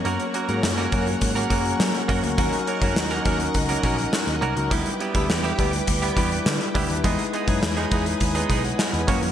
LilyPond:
<<
  \new Staff \with { instrumentName = "String machine" } { \time 4/4 \key e \lydian \tempo 4 = 103 << { <fis'' cis'''>1~ | <fis'' cis'''>1 | <g'' d'''>1 | <gis'' dis'''>2.~ <gis'' dis'''>8 <fis'' cis'''>8 | } \\ { <ais' cis''>1 | <ais' dis''>1 | b'1 | b'2.~ b'8 <ais' cis''>8 | } >> }
  \new Staff \with { instrumentName = "Tine electric piano" } { \time 4/4 \key e \lydian << { r2 r8 fis''16 gis''16 ais''4 | r1 | r1 | r2 r8. <cis'' fis''>16 <dis'' gis''>16 <fis'' b''>8 r16 | } \\ { <fis ais cis' ais'>8 r16 <fis ais cis' gis'>8 r16 <fis ais cis' ais'>8. r16 <fis ais cis' ais'>8. r8 <fis ais cis' ais'>16 | <fis cis' dis' ais'>8 r16 <fis cis' dis' ais'>8 r16 <fis cis' dis' ais'>8. r16 <fis cis' dis' ais'>8. r8 <fis cis' dis' ais'>16 | <g d' e'>8 r16 <g d' e' b'>8 r16 <g d' e' b'>8. r16 <g d' e' b'>8. r8 <g d' e' b'>16 | <gis dis' e' b'>8 r16 <gis dis' e' cis''>8 r16 <gis dis' e' b'>8. r4 r16 <ais cis' fis' cis''>8 | } >> }
  \new Staff \with { instrumentName = "Clean electric guitar" } { \time 4/4 \key e \lydian <ais cis' fis' ais'>16 r16 <ais cis' fis' ais'>16 <ais cis' fis' ais'>16 r16 <ais cis' fis' ais'>16 <ais cis' fis' ais'>16 r8 <ais cis' fis' ais'>16 <ais cis' fis' ais'>16 r8. <ais cis' fis' ais'>16 r16 | <ais cis' fis' ais'>16 r16 <ais cis' fis' ais'>16 <ais cis' fis' ais'>16 r16 <ais cis' fis' ais'>16 <ais cis' fis' ais'>16 r8 <ais cis' fis' ais'>16 <ais cis' fis' ais'>16 r8. <ais cis' fis' ais'>16 r16 | <g b e' g'>16 r16 <g b e' g'>16 <g b e' g'>16 r16 <g b e' g'>16 <g b e' g'>16 r8 <g b e' g'>16 <g b e' g'>16 r8. <g b e' g'>16 r16 | <gis b dis' gis'>16 r16 <gis b dis' gis'>16 <gis b dis' gis'>16 r16 <gis b dis' gis'>16 <gis b dis' gis'>16 r8 <gis b dis' gis'>16 <gis b dis' gis'>16 r8. <fis ais cis' fis'>16 r16 | }
  \new Staff \with { instrumentName = "Picked electric bass" } { \clef bass \time 4/4 \key e \lydian fis,16 r8 gis,16 fis,8 fis,8 gis,8 fis,8 fis16 r16 fis,16 d,16 | dis,16 r8 fis,16 dis,8 dis,8 cis,8 ais,,8 r16 dis,16 c,16 cis,16 | d,16 r8 d,16 e,8 d,8 d,8 e,8 d16 r16 d,16 dis,16 | e,16 r8 fis,16 e,8 e,8 dis,8 b,,8 r16 e,16 fis,16 eis,16 | }
  \new DrumStaff \with { instrumentName = "Drums" } \drummode { \time 4/4 hh16 hh16 hh16 hh16 sn16 hh16 <hh bd>16 hh16 <hh bd>16 hh16 <hh bd>16 hh16 sn16 hh16 <hh bd>16 hh16 | <hh bd>16 hh16 hh16 <hh bd>16 sn16 hh16 <hh bd>16 hh16 <hh bd>16 hh16 <hh bd>16 hh16 sn16 hh16 hh16 hh16 | <hh bd>16 hh16 hh16 <hh bd>16 sn16 hh16 <hh bd>16 hh16 <hh bd>16 hh16 <hh bd>16 hh16 sn16 hh16 <hho bd>16 hh16 | <hh bd>16 hh16 hh16 <hh bd>16 sn16 hh16 <hh bd>16 hh16 <hh bd>16 hh16 <hh bd>16 hh16 sn16 hh16 <hh bd>16 hh16 | }
>>